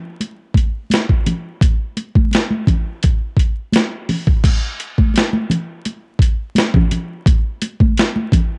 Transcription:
0.20 closed hi-hat medium
0.20 muted conga soft
0.54 kick medium
0.54 closed hi-hat medium
0.54 muted conga soft
0.90 snare loud
0.90 closed hi-hat medium
0.90 muted conga soft
0.90 high conga soft
1.09 kick medium
1.26 closed hi-hat medium
1.26 muted conga soft
1.26 low conga medium
1.61 kick loud
1.61 closed hi-hat medium
1.61 muted conga soft
1.97 closed hi-hat medium
1.97 muted conga soft
2.15 kick medium
2.15 high conga soft
2.31 snare loud
2.31 closed hi-hat medium
2.31 muted conga soft
2.51 high conga medium
2.67 kick medium
2.67 closed hi-hat soft
2.67 low conga medium
3.03 kick medium
3.03 closed hi-hat medium
3.37 kick medium
3.37 closed hi-hat medium
3.72 snare loud
3.72 closed hi-hat medium
3.72 muted conga soft
3.72 high conga medium
4.09 open hi-hat soft
4.09 muted conga soft
4.09 low conga medium
4.27 kick medium
4.44 kick medium
4.44 closed hi-hat medium
4.44 crash loud
4.44 muted conga soft
4.80 closed hi-hat medium
4.98 kick medium
4.98 high conga medium
5.14 snare loud
5.14 closed hi-hat medium
5.14 muted conga soft
5.33 high conga medium
5.50 closed hi-hat medium
5.50 muted conga soft
5.50 low conga medium
5.85 closed hi-hat medium
5.85 muted conga soft
6.19 kick medium
6.19 closed hi-hat medium
6.55 snare loud
6.55 closed hi-hat medium
6.55 muted conga soft
6.55 high conga medium
6.74 kick medium
6.74 low conga medium
6.91 closed hi-hat medium
6.91 low conga medium
7.26 kick loud
7.26 closed hi-hat medium
7.26 muted conga soft
7.62 closed hi-hat medium
7.62 muted conga soft
7.80 kick medium
7.80 high conga medium
7.97 snare loud
7.97 closed hi-hat medium
8.16 high conga medium
8.32 kick medium
8.32 closed hi-hat medium
8.32 muted conga soft
8.32 low conga medium

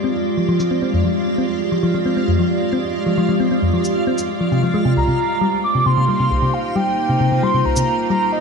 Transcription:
0.00 4.93 G#3 medium
0.00 0.09 C4 medium
0.00 4.92 F4 medium
0.00 8.40 F4 medium
0.00 8.40 G4 medium
0.00 4.93 D5 medium
0.00 8.40 F5 medium
0.37 0.42 F3 medium
0.49 0.59 F3 loud
0.60 0.71 F3 medium
0.60 shaker medium
0.71 0.79 C4 medium
0.82 0.90 C4 medium
0.94 1.02 F2 medium
1.05 1.10 F3 medium
1.38 1.43 C4 medium
1.72 1.77 F3 medium
1.83 1.93 F3 medium
1.94 2.05 F3 medium
2.06 2.14 C4 medium
2.17 2.25 C4 medium
2.28 2.36 F2 medium
2.39 2.44 F3 medium
2.73 2.78 C4 medium
3.06 3.11 F3 medium
3.18 3.28 F3 loud
3.29 3.39 F3 medium
3.40 3.48 C4 medium
3.51 3.59 C4 medium
3.62 3.70 F2 medium
3.74 3.78 F3 medium
3.85 shaker medium
4.07 4.12 C4 medium
4.18 shaker medium
4.41 4.49 F3 medium
4.52 4.63 C3 medium
4.63 4.71 F3 medium
4.74 4.82 G#3 medium
4.85 4.96 C3 medium
4.96 5.05 C2 medium
4.96 8.40 A#3 medium
4.96 8.40 D#4 medium
4.96 8.40 C5 medium
4.96 5.60 A#5 loud
5.08 5.13 C3 medium
5.41 5.46 G3 medium
5.64 5.85 D6 loud
5.75 5.80 C3 medium
5.86 5.96 C3 loud
5.86 6.55 C6 loud
5.97 6.08 C3 medium
6.09 6.17 G3 medium
6.20 6.30 C3 medium
6.31 6.39 C2 medium
6.42 6.47 C3 medium
6.54 6.77 F5 loud
6.76 6.81 G3 medium
6.76 7.45 G5 loud
7.09 7.14 C3 medium
7.21 7.31 C3 loud
7.32 7.42 C3 medium
7.43 7.51 G3 medium
7.43 7.65 C6 loud
7.54 7.65 C3 medium
7.65 7.73 C2 medium
7.65 8.07 A#5 loud
7.77 7.81 C3 medium
7.77 shaker medium
8.10 8.15 G3 medium
8.10 8.31 A#5 loud
8.32 8.40 D#5 medium

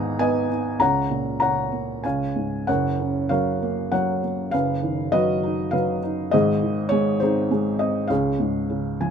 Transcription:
0.00 0.76 G#1 medium
0.00 0.76 G#2 medium
0.00 0.46 D#3 medium
0.00 0.18 B3 medium
0.00 0.48 D#4 medium
0.00 0.21 B4 medium
0.00 0.21 D#5 medium
0.00 0.19 G#5 loud
0.00 0.21 A#5 loud
0.19 0.78 B3 medium
0.19 0.77 B4 medium
0.19 0.77 D#5 medium
0.19 0.82 G#5 medium
0.49 0.79 D#4 medium
0.79 2.00 C#2 medium
0.79 1.41 C#5 medium
0.79 1.40 F#5 medium
0.79 1.38 A#5 medium
1.10 2.01 A#2 soft
1.40 2.02 C#3 soft
1.40 2.01 C#5 medium
1.40 2.01 F#5 medium
1.40 2.05 A#5 medium
1.72 2.03 A#3 medium
2.04 2.66 C#2 medium
2.04 2.65 C#5 medium
2.04 2.65 F5 medium
2.04 2.70 G#5 medium
2.36 2.67 G#2 soft
2.67 4.50 F#1 medium
2.67 4.50 F#2 medium
2.67 3.30 A#4 medium
2.67 3.29 C#5 medium
2.67 3.32 F#5 medium
3.00 4.20 C#3 medium
3.29 3.91 F#3 soft
3.29 3.93 A#4 medium
3.29 3.92 C#5 medium
3.29 3.94 F5 medium
3.62 4.22 A#3 medium
3.92 4.51 F#3 medium
3.92 4.50 A#4 medium
3.92 4.50 C#5 medium
3.92 4.49 F#5 medium
4.23 4.53 A#3 soft
4.51 6.29 F#1 medium
4.51 6.29 F#2 medium
4.51 5.12 B4 medium
4.51 5.14 F5 medium
4.83 5.99 D#3 medium
5.12 5.72 F#3 medium
5.12 5.99 F#4 medium
5.12 5.72 B4 medium
5.12 5.74 D#5 medium
5.43 6.02 D#4 medium
5.71 6.31 F#3 medium
5.71 6.29 B4 medium
5.71 6.34 F5 medium
6.03 6.32 D#4 medium
6.31 8.06 G#1 medium
6.31 8.06 G#2 medium
6.31 7.17 G#4 medium
6.31 7.17 C5 medium
6.31 6.93 D#5 medium
6.62 7.77 D#3 medium
6.89 7.50 G#3 medium
6.89 7.21 C#5 loud
7.20 7.79 C4 medium
7.20 8.07 D#4 medium
7.20 8.07 G#4 medium
7.20 7.76 C5 medium
7.51 8.08 G#3 medium
7.79 8.09 C4 medium
7.79 8.10 D#5 medium
8.08 9.11 C#2 medium
8.08 9.11 G#4 medium
8.08 9.11 C#5 medium
8.08 9.11 F5 medium
8.40 9.11 G#2 soft
8.70 9.11 C#3 medium
9.00 9.11 F3 medium
9.00 9.11 G#5 medium

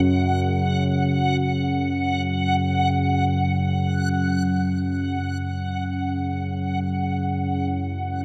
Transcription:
0.00 5.21 F#2 medium
0.00 5.21 C#3 medium
0.00 5.21 F#5 medium
5.21 8.25 F#2 medium
5.21 8.25 C#3 medium
5.21 8.25 F#3 medium
5.21 8.25 F#5 medium
5.98 8.25 G#4 medium
6.68 8.25 E4 medium

